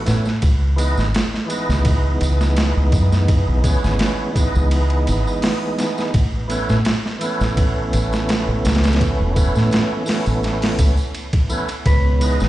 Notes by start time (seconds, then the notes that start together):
0.04 A2 E3 A3 B3 C#4, snare, ride, tambourine
0.25 snare, tambourine
0.42 C#2, kick, ride, tambourine
0.76 E3 G#3 B3 D#4, ride, tambourine
0.97 G#1, snare, tambourine
1.15 snare, ride, tambourine
1.34 snare
1.46 E3 G#3
1.50 B3 D#4, ride, tambourine
1.69 C#2, snare, tambourine
1.85 kick, ride, tambourine
2.21 C#2, ride, tambourine
2.41 snare, tambourine
2.57 snare, ride, tambourine
2.77 C#2
2.92 F#2, kick, ride, tambourine
3.12 snare, tambourine
3.28 kick, ride, tambourine
3.48 B1
3.62 E3 G#3 B3 C#4, kick, ride, tambourine
3.84 G#1, snare, tambourine
3.99 snare, ride, tambourine
4.32 E3 G#3, kick, ride
4.37 B3 D#4, tambourine
4.55 C#2, tambourine
4.71 ride, tambourine
4.90 ride
5.07 G#1, ride, tambourine
5.27 tambourine
5.42 snare, open hi-hat, tambourine
5.79 snare, ride, tambourine
5.98 snare, tambourine
6.14 A1, kick, ride, tambourine
6.48 E3 A3 B3 C#4, ride, tambourine
6.69 A2, snare, tambourine
6.85 snare, ride, tambourine
7.06 snare
7.19 E3 A3, ride, tambourine
7.23 B3 C#4
7.41 A1, snare, tambourine
7.57 kick, ride, tambourine
7.93 A1, ride, tambourine
8.13 snare, tambourine
8.29 snare, ride, tambourine
8.48 A1
8.65 C#2, snare, ride, tambourine
8.75 snare, ride
8.83 snare, ride, tambourine
8.93 snare, ride
9.01 kick, ride, tambourine
9.20 E1
9.34 E3 A3 B3 C#4, kick, ride, tambourine
9.56 A2, snare, tambourine
9.71 snare, ride, tambourine
10.04 E3 A3, open hi-hat, tambourine
10.09 B3 C#4, snare
10.26 A1, tambourine
10.43 snare, ride, tambourine
10.62 snare, open hi-hat
10.79 C#2, kick, ride, tambourine
10.97 tambourine
11.14 ride, tambourine
11.33 kick, ride
11.49 E3 A3 B3 C#4, tambourine
11.68 ride, tambourine
11.86 C#2 G#3 B3 B4 C#5, kick, ride, tambourine
12.20 E3 G#3 B3 D#4, ride, tambourine
12.40 G#1, snare, tambourine